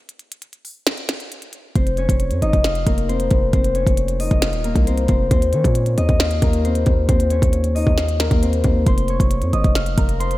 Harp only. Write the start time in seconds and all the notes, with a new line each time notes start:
1.75 C4 C5
1.98 C#4 C#5
2.42 D#4 D#5
2.64 F4 F5
2.86 A#3 A#4
3.09 C4 C5
3.53 C4 C5
3.75 C#4 C#5
4.20 D#4 D#5
4.42 F4 F5
4.64 A#3 A#4
4.87 C4 C5
5.09 C4 C5
5.31 C4 C5
5.53 C#4 C#5
5.98 D#4 D#5
6.20 F4 F5
6.42 A#3 A#4
6.65 C4 C5
7.09 C4 C5
7.31 C#4 C#5
7.75 D#4 D#5
7.98 F4 F5
8.20 A#3 A#4
8.43 C4 C5
8.65 C4 C5
8.87 C5 C6
9.09 C#5 C#6
9.53 D#5 D#6
9.75 F5 F6
9.98 A#4 A#5
10.20 C5 C6